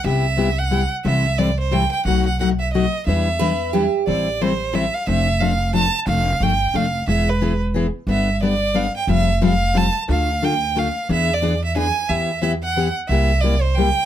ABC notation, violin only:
X:1
M:3/4
L:1/16
Q:"Swing" 1/4=179
K:Em
V:1 name="Violin"
e6 f4 z2 | e4 d2 c2 g2 g2 | f2 f2 f2 e2 ^d4 | e8- e2 z2 |
[K:Am] d4 c4 e2 f2 | e4 f4 a3 z | f4 g4 f4 | e2 B4 z6 |
e4 d4 f2 g2 | e4 f4 a3 z | f4 g4 f4 | e2 d4 e2 ^g4 |
[K:Em] e4 e2 f4 z2 | e4 d2 c2 g4 |]